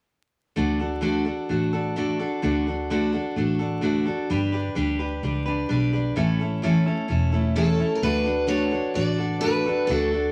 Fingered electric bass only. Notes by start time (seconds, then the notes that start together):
0.57 D2
1.50 A1
2.44 D2
3.36 A1
4.30 G1
4.77 D2
5.23 C#2
5.71 B1
6.16 A1
7.10 E1
8.02 D2
8.96 A1
9.89 D2